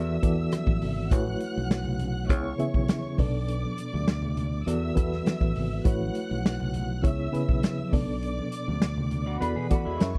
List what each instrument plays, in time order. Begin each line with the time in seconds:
Already playing: fingered electric bass E2, reed electric piano E3 B3 F#4 A4 D5, violin section E5 E6
0.22 fingered electric bass E2, reed electric piano E3 B3 F#4 A4 D5, kick, closed hi-hat, muted conga
0.52 cross-stick, closed hi-hat, muted conga, high conga
0.67 fingered electric bass A1, kick, high conga
0.82 fingered electric bass G#1, open hi-hat, muted conga, low conga
1.11 fingered electric bass A1, reed electric piano A3 E4 F#4 B4 C#5, violin section F#5 F#6, kick, closed hi-hat, muted conga
1.27 high conga
1.40 closed hi-hat, muted conga
1.56 fingered electric bass B1, high conga
1.71 snare, closed hi-hat
1.84 low conga
1.99 closed hi-hat, muted conga, high conga, low conga
2.29 fingered electric bass C#2, reed electric piano C#3 B3 E4 G#4 C#5, violin section C#5 C#6, kick, closed hi-hat, muted conga
2.58 reed electric piano C#3 B3 E4 G#4 E5, muted fingered electric bass stroke, closed hi-hat, muted conga
2.74 fingered electric bass B1, kick
2.88 snare, closed hi-hat, muted conga, high conga
3.03 high conga
3.18 fingered electric bass B1, reed electric piano B2 B3 D4 A4 D5, violin section D5 D6, kick, open hi-hat, muted conga, low conga
3.48 closed hi-hat, muted conga
3.63 high conga
3.77 closed hi-hat, muted conga
3.93 fingered electric bass D2, high conga
4.08 snare, closed hi-hat
4.22 low conga
4.37 closed hi-hat, muted conga, low conga
4.66 fingered electric bass E2, reed electric piano E3 B3 F#4 A4 D5, violin section E5 E6, closed hi-hat, muted conga
4.95 fingered electric bass E2, reed electric piano E3 B3 F#4 A4 B4, kick, closed hi-hat
5.12 snare
5.26 snare, closed hi-hat, muted conga, high conga
5.41 fingered electric bass A1, kick, high conga
5.56 fingered electric bass G#1, open hi-hat, muted conga, low conga
5.84 fingered electric bass A1, reed electric piano A3 E4 F#4 B4 C#5, violin section F#5 F#6, kick, closed hi-hat, muted conga
6.00 high conga
6.15 closed hi-hat, muted conga
6.31 fingered electric bass B1, high conga
6.46 snare, closed hi-hat
6.60 low conga
6.74 closed hi-hat, high conga, low conga
7.02 fingered electric bass C#2, reed electric piano C#3 B3 E4 G#4 C#5, violin section E5 E6, kick, closed hi-hat, muted conga
7.32 reed electric piano C#3 B3 E4 G#4 B4, muted fingered electric bass stroke, closed hi-hat
7.49 fingered electric bass B1, kick
7.63 snare, closed hi-hat, high conga
7.79 high conga
7.92 fingered electric bass B1, reed electric piano B2 B3 D4 A4 D5, violin section D5 D6, kick, open hi-hat, muted conga, low conga
8.23 closed hi-hat
8.38 high conga
8.52 closed hi-hat
8.68 fingered electric bass D2, high conga
8.82 snare, closed hi-hat, muted conga
8.97 low conga
9.11 closed hi-hat, muted conga, low conga
9.26 clean electric guitar F#4 D5
9.40 fingered electric bass E2, reed electric piano E3 B3 F#4 A4 D5, clean electric guitar D4 B4, violin section B4 B5, closed hi-hat
9.56 fingered electric bass B2, clean electric guitar B3 G#4
9.70 reed electric piano E3 B3 F#4 A4 D5, clean electric guitar A3 F#4, kick, closed hi-hat
9.85 fingered electric bass E2, clean electric guitar G#3 E4
10.00 fingered electric bass F#2, reed electric piano F#3 C#4 G#4 A#4 E5, violin section C#5 C#6, snare, closed hi-hat, muted conga, high conga
10.15 kick